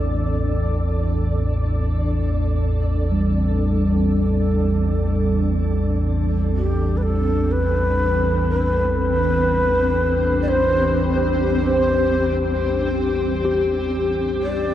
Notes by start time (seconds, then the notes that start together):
Already playing: A1 E2 C4 D4 A4 D5
3.12 G3
6.55 C4 G4
6.97 B4
7.03 A4
7.52 B4
8.50 B4
9.33 G4
10.42 D5
10.49 C5
11.48 C5
13.45 G4
14.43 D5